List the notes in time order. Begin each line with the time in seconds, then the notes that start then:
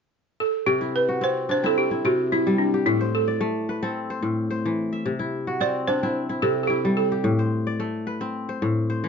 0.40 A4
0.66 C3 G4
0.81 E4
0.96 B4
1.09 F#4
1.21 C4 C5
1.49 D4 C5
1.64 C4 E4 A4
1.78 G4
1.91 E4
2.05 C3 F#4
2.32 E4
2.47 G3
2.58 D4
2.74 G4
2.86 A2 E4
3.01 C5
3.15 A4
3.28 D5
3.41 A3
3.69 B4
3.83 C4 A4
4.10 C5
4.22 A2
4.50 C5
4.66 E3
4.93 E5
5.06 C3
5.19 E4
5.47 F#4
5.60 C4 D5
5.88 D4 C5
6.03 C4 E4
6.29 E4
6.42 C3 A4
6.63 A4
6.67 E4 G4
6.85 G3
6.97 A4
7.12 G4
7.24 A2
7.39 C5
7.67 D5
7.80 A3
8.07 B4
8.21 C4
8.49 C5
8.62 A2
8.90 C5
9.04 E3